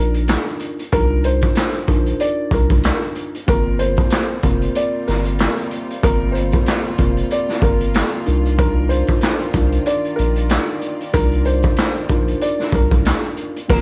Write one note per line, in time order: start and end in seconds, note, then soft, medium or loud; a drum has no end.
0.00 0.37 A#1 medium
0.00 0.81 D4 loud
0.00 0.81 D#4 medium
0.00 0.82 F4 medium
0.00 0.42 A#4 medium
0.00 0.82 A#4 loud
0.14 closed hi-hat medium
0.28 snare loud
0.28 clap medium
0.28 closed hi-hat loud
0.60 closed hi-hat medium
0.79 closed hi-hat medium
0.92 1.43 C2 loud
0.92 1.81 D4 medium
0.92 1.82 D#4 medium
0.92 1.82 F4 medium
0.92 1.21 A#4 loud
0.92 1.82 A#4 loud
0.92 kick loud
0.92 closed hi-hat medium
1.23 2.16 C5 medium
1.23 closed hi-hat medium
1.41 kick medium
1.41 closed hi-hat medium
1.55 snare loud
1.55 clap medium
1.55 closed hi-hat medium
1.73 closed hi-hat soft
1.87 2.14 A#1 medium
1.87 3.36 D4 medium
1.87 3.36 D#4 medium
1.87 3.37 F4 medium
1.87 3.37 A#4 loud
1.87 kick medium
1.87 closed hi-hat medium
2.06 closed hi-hat medium
2.20 2.49 D5 medium
2.20 closed hi-hat medium
2.51 2.91 C2 loud
2.51 3.00 A#4 medium
2.51 kick loud
2.51 closed hi-hat medium
2.69 kick loud
2.69 closed hi-hat medium
2.83 snare loud
2.83 clap loud
2.83 closed hi-hat loud
3.15 closed hi-hat medium
3.34 closed hi-hat medium
3.47 3.99 G1 loud
3.47 8.23 C3 medium
3.47 8.23 G3 medium
3.47 4.36 A#3 loud
3.47 13.66 A#3 medium
3.47 4.36 C4 medium
3.47 4.37 F4 medium
3.47 13.66 F4 medium
3.47 4.37 A#4 loud
3.47 3.77 A#4 loud
3.47 kick loud
3.47 closed hi-hat medium
3.79 4.71 C5 medium
3.79 closed hi-hat medium
3.96 kick medium
3.96 closed hi-hat medium
4.10 snare loud
4.10 clap loud
4.10 closed hi-hat loud
4.29 closed hi-hat soft
4.43 4.69 F1 loud
4.43 5.92 A#3 medium
4.43 5.92 C4 medium
4.43 5.93 F4 medium
4.43 5.93 A#4 loud
4.43 kick medium
4.43 closed hi-hat medium
4.62 closed hi-hat medium
4.75 5.05 D5 medium
4.75 closed hi-hat medium
5.08 5.48 G1 medium
5.08 5.54 A#4 medium
5.08 snare soft
5.08 closed hi-hat medium
5.25 closed hi-hat medium
5.39 snare loud
5.39 clap medium
5.39 closed hi-hat loud
5.57 closed hi-hat soft
5.71 closed hi-hat medium
5.90 closed hi-hat medium
6.02 6.54 G1 loud
6.02 6.92 A#3 medium
6.02 6.92 C4 medium
6.02 6.92 F4 medium
6.02 6.92 A#4 loud
6.02 6.32 A#4 loud
6.02 kick loud
6.02 closed hi-hat medium
6.32 7.25 C5 medium
6.32 closed hi-hat medium
6.52 kick loud
6.52 closed hi-hat medium
6.66 snare loud
6.66 clap medium
6.66 closed hi-hat medium
6.85 closed hi-hat soft
6.98 7.24 F1 medium
6.98 8.26 A#3 medium
6.98 8.26 C4 medium
6.98 8.26 F4 medium
6.98 8.26 A#4 loud
6.98 kick loud
6.98 closed hi-hat medium
7.17 closed hi-hat medium
7.31 7.60 D5 medium
7.31 closed hi-hat medium
7.49 snare soft
7.62 8.02 G1 medium
7.62 8.10 A#4 medium
7.62 kick loud
7.62 closed hi-hat medium
7.80 closed hi-hat medium
7.94 snare loud
7.94 clap loud
7.94 closed hi-hat loud
8.26 9.03 C2 loud
8.26 13.65 D#3 medium
8.26 8.56 D4 loud
8.26 8.56 D#4 medium
8.26 8.56 F4 medium
8.26 8.57 A#4 loud
8.26 13.65 D5 medium
8.26 closed hi-hat medium
8.45 closed hi-hat medium
8.58 9.47 D4 medium
8.58 9.47 D#4 medium
8.58 9.47 F4 medium
8.58 9.48 A#4 loud
8.58 8.87 A#4 loud
8.58 kick loud
8.58 closed hi-hat medium
8.89 9.81 C5 medium
8.89 closed hi-hat medium
9.07 kick medium
9.07 closed hi-hat medium
9.21 snare loud
9.21 clap medium
9.21 closed hi-hat loud
9.40 closed hi-hat soft
9.53 9.80 C2 loud
9.53 11.03 D4 loud
9.53 11.03 D#4 medium
9.53 11.03 F4 medium
9.53 11.03 A#4 loud
9.53 kick loud
9.53 closed hi-hat medium
9.72 closed hi-hat medium
9.86 10.15 D5 medium
9.86 closed hi-hat medium
10.04 closed hi-hat soft
10.16 10.58 A#1 loud
10.16 10.64 A#4 medium
10.16 closed hi-hat medium
10.35 closed hi-hat medium
10.49 snare loud
10.49 clap loud
10.49 closed hi-hat loud
10.81 closed hi-hat medium
11.01 closed hi-hat soft
11.13 11.65 C2 loud
11.13 12.03 D4 medium
11.13 12.03 D#4 medium
11.13 12.03 F4 medium
11.13 11.42 A#4 loud
11.13 12.03 A#4 loud
11.13 kick loud
11.13 closed hi-hat loud
11.32 closed hi-hat soft
11.45 12.37 C5 medium
11.45 closed hi-hat medium
11.62 kick medium
11.62 closed hi-hat medium
11.76 snare loud
11.76 clap loud
11.76 closed hi-hat loud
12.09 12.35 A#1 medium
12.09 13.58 D4 medium
12.09 13.58 D#4 medium
12.09 13.58 F4 medium
12.09 13.58 A#4 loud
12.09 kick loud
12.09 closed hi-hat medium
12.28 closed hi-hat medium
12.41 12.71 D5 medium
12.41 closed hi-hat medium
12.59 snare soft
12.73 13.13 C2 loud
12.73 13.21 A#4 medium
12.73 kick medium
12.73 closed hi-hat medium
12.91 kick loud
12.91 closed hi-hat medium
13.05 snare loud
13.05 clap medium
13.05 closed hi-hat loud
13.23 closed hi-hat soft
13.37 closed hi-hat medium
13.56 closed hi-hat medium
13.68 13.81 G1 loud
13.68 13.81 A#3 loud
13.68 13.81 C4 medium
13.68 13.81 F4 medium
13.68 13.81 A#4 loud
13.68 kick loud
13.68 crash loud